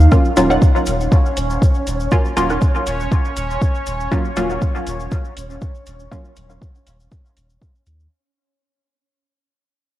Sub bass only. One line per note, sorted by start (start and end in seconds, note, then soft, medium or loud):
0.37 0.57 D#1 loud
0.87 1.07 D#1 loud
1.37 1.57 D#1 medium
1.87 2.07 D#1 medium
2.37 2.57 D#1 loud
2.87 3.07 D#1 medium
3.37 3.57 D#1 loud
3.87 4.07 D#1 medium
4.37 4.57 D#1 loud
4.87 5.07 D#1 medium
5.37 5.57 D#1 medium
5.87 6.07 D#1 medium
6.37 6.57 D#1 medium
6.87 7.07 D#1 medium
7.37 7.57 D#1 medium
7.86 8.07 D#2 loud